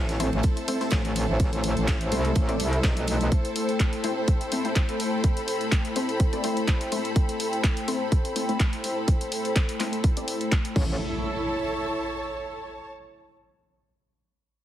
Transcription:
Already playing: wobble bass A1, analog synth pad A3 A4 C5 E5, string section E4 A4 C5 A5
0.09 snare, closed hi-hat
0.20 synth stab A3 C4 E4 C5, open hi-hat, ride
0.33 wobble bass A1, ride
0.43 kick, closed hi-hat, ride
0.57 closed hi-hat
0.68 synth stab A3 C4 E4 C5, open hi-hat, ride
0.81 synth stab A3 C4 E4 C5, snare, closed hi-hat
0.90 wobble bass A1, kick, snare, clap, closed hi-hat, ride
1.05 closed hi-hat
1.16 open hi-hat, ride
1.29 wobble bass A1
1.40 kick, closed hi-hat, ride
1.53 closed hi-hat
1.64 open hi-hat, ride
1.77 wobble bass A1, closed hi-hat
1.88 kick, snare, clap, closed hi-hat, ride
2.01 closed hi-hat
2.12 wobble bass C2, synth stab A3 C4 E4 C5, open hi-hat, ride
2.25 closed hi-hat
2.35 wobble bass A1, kick, closed hi-hat, ride
2.49 synth stab A3 C4 E4 D5, closed hi-hat
2.60 wobble bass C2, open hi-hat, ride
2.73 closed hi-hat
2.84 wobble bass B1, kick, snare, clap, closed hi-hat, ride
2.97 closed hi-hat, ride
3.07 open hi-hat, ride
3.21 closed hi-hat
3.32 analog synth pad G5, kick, closed hi-hat
3.45 closed hi-hat
3.56 open hi-hat
3.69 closed hi-hat
3.77 string section B5, kick, clap, closed hi-hat
3.93 closed hi-hat
4.04 synth stab A3 C4 E4 C5, open hi-hat
4.28 kick, closed hi-hat
4.41 closed hi-hat
4.52 synth stab A3 C4 E4 C5, open hi-hat
4.65 synth stab A3 C4 E4 C5, closed hi-hat
4.76 kick, clap, closed hi-hat
4.89 closed hi-hat
5.00 open hi-hat
5.24 kick, closed hi-hat
5.37 closed hi-hat
5.48 open hi-hat
5.61 closed hi-hat
5.72 kick, clap, closed hi-hat
5.85 closed hi-hat
5.96 synth stab A3 C4 E4 C5, open hi-hat
6.09 closed hi-hat
6.20 kick, closed hi-hat
6.33 synth stab A3 C4 E4 D5, closed hi-hat
6.44 synth stab A3 C4 E4 C5, open hi-hat
6.57 closed hi-hat
6.68 kick, clap, closed hi-hat
6.81 closed hi-hat
6.92 synth stab A3 C4 E4 C5, open hi-hat
7.05 closed hi-hat
7.16 kick, closed hi-hat
7.29 closed hi-hat
7.40 open hi-hat
7.53 closed hi-hat
7.64 kick, clap, closed hi-hat
7.77 closed hi-hat
7.88 synth stab A3 C4 E4 C5, open hi-hat
8.12 kick, closed hi-hat
8.25 closed hi-hat
8.36 synth stab A3 C4 E4 C5, open hi-hat
8.49 synth stab A3 C4 E4 C5, closed hi-hat
8.60 kick, clap, closed hi-hat
8.73 closed hi-hat
8.84 open hi-hat
9.08 kick, closed hi-hat
9.21 closed hi-hat
9.32 open hi-hat
9.45 closed hi-hat
9.56 kick, clap, closed hi-hat
9.69 closed hi-hat
9.80 synth stab A3 C4 E4 C5, clap, open hi-hat
9.93 closed hi-hat
10.04 kick, closed hi-hat
10.17 synth stab A3 C4 E4 D5, closed hi-hat
10.28 open hi-hat
10.41 closed hi-hat
10.52 kick, clap, closed hi-hat
10.65 closed hi-hat
10.76 wobble bass A1, synth stab A3 C#4 E4 C#5, analog synth pad A3 A4 C#5 E5, string section E4, kick, crash, impact
10.83 string section A4
11.15 string section C#5
11.21 string section A5

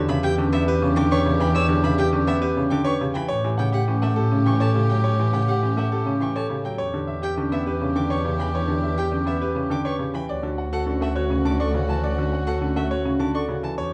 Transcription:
Already playing: double bass E2, grand piano D3, violin section D4 G4, marimba G4, oboe G4
0.09 grand piano C#3 E5, violin B5
0.23 grand piano G4, marimba G4, violin G5
0.38 grand piano D3, marimba C#4
0.52 grand piano B3 E5, violin E5
0.68 marimba G4, grand piano B4
0.82 grand piano C#3, marimba C#4
0.96 grand piano D3 G5, violin D6
1.11 marimba B4, grand piano C#5, violin C#6
1.26 grand piano C#3, marimba G4
1.40 grand piano E3 G5, violin B5
1.55 marimba C#5, grand piano C#5, violin E6
1.69 grand piano D3, marimba G4
1.84 grand piano C#3 E5, violin B5
1.98 marimba G4, grand piano G4, violin G5
2.13 grand piano D3, marimba C#4
2.27 grand piano B3 E5, violin E5
2.42 marimba G4, grand piano B4
2.57 grand piano C#3, marimba C#4
2.70 grand piano D3 G5, violin D6
2.84 marimba B4, grand piano C#5, violin C#6
3.01 grand piano C#3, marimba G4
3.14 grand piano E3 G5, violin B5
3.28 double bass A2, violin section C#4 G4, oboe G4, grand piano C#5, marimba C#5
3.44 grand piano E3, marimba G4
3.58 grand piano C#3 F#5, violin G5
3.72 grand piano G4, marimba G4, violin F#5
3.88 grand piano E3, marimba C#4
4.02 grand piano A3 F#5, violin E5
4.16 marimba G4, grand piano A4
4.31 grand piano C#3, marimba C#4
4.46 grand piano E3 G5, violin C#6
4.60 marimba A4, grand piano C#5, violin A5
4.75 grand piano C#3, marimba G4
4.89 grand piano F#3 G5, violin G5
5.04 grand piano C#5, marimba C#5
5.19 grand piano E3, marimba G4
5.33 grand piano C#3 F#5, violin G5
5.48 marimba G4, grand piano G4, violin F#5
5.63 grand piano E3, marimba C#4
5.77 grand piano A3 F#5, violin E5
5.92 marimba G4, grand piano A4
6.06 grand piano C#3, marimba C#4
6.20 grand piano E3 G5, violin C#6
6.36 marimba A4, grand piano C#5, violin A5
6.50 grand piano C#3, marimba G4
6.64 grand piano F#3 G5, violin G5
6.78 double bass E2, violin section D4 G4, oboe G4, grand piano C#5, marimba C#5
6.94 grand piano D3, marimba G4
7.07 grand piano E5
7.22 grand piano G4, marimba G4, violin G5
7.37 grand piano D3, marimba C#4
7.52 grand piano B3 E5, violin E5
7.66 marimba G4, grand piano B4
7.81 grand piano C#3, marimba C#4
7.96 grand piano D3 G5, violin D6
8.10 marimba B4, grand piano C#5, violin C#6
8.25 grand piano C#3, marimba G4
8.39 grand piano E3 G5, violin B5
8.54 marimba C#5, grand piano C#5
8.68 grand piano D3, marimba G4
8.83 grand piano E5
8.98 marimba G4, grand piano G4, violin G5
9.12 grand piano D3, marimba C#4
9.26 grand piano B3 E5, violin E5
9.42 marimba G4, grand piano B4
9.55 grand piano C#3, marimba C#4
9.70 grand piano D3 G5, violin D6
9.85 marimba B4, grand piano C#5, violin C#6
9.99 grand piano C#3, marimba G4
10.14 grand piano E3 G5, violin B5
10.28 double bass D2, violin section C#4 F#4, oboe F#4, marimba C#5, grand piano D5
10.43 grand piano D3, marimba F#4
10.58 grand piano F#5
10.73 marimba F#4, grand piano A4, violin F#5
10.86 grand piano D3, marimba C#4
11.01 grand piano A3 F#5, violin E5
11.16 marimba F#4, grand piano C#5
11.30 grand piano C#3, marimba C#4
11.45 grand piano D3 A5, violin D6
11.60 marimba A4, grand piano D5, violin C#6
11.74 grand piano C#3, marimba F#4
11.89 grand piano E3 A5, violin A5
12.04 marimba C#5, grand piano D5
12.18 grand piano D3, marimba F#4
12.33 grand piano F#5
12.47 marimba F#4, grand piano A4, violin F#5
12.61 grand piano D3, marimba C#4
12.76 grand piano A3 F#5, violin E5
12.91 marimba F#4, grand piano C#5
13.05 grand piano C#3, marimba C#4
13.19 grand piano D3 A5, violin D6
13.35 marimba A4, grand piano D5, violin C#6
13.49 grand piano C#3, marimba F#4
13.63 grand piano E3 A5, violin A5
13.77 double bass E2, violin section D4 G4, oboe G4, grand piano C#5, marimba C#5

